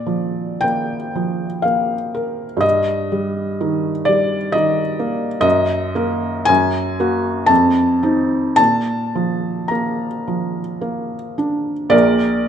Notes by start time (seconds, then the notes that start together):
Already playing: A#2 D5
0.06 F3
0.61 A#3 G5
1.15 F3
1.62 A#3 F5
2.15 A#4
2.57 G2 D#5
3.12 G3
3.61 D#3
4.05 G3 D5
4.52 D#3 D#5
4.99 A#3
5.41 F#2 D#5
5.95 A#3 A#4
6.45 F#2 G#5
7.00 A#3 F#4
7.46 F2 A5
8.03 C4 D#4
8.56 A#2 A5
9.15 F3
9.68 A#3 A#5
10.28 F3
10.81 A#3
11.38 D4
11.90 A#1 A#2 A#4 D5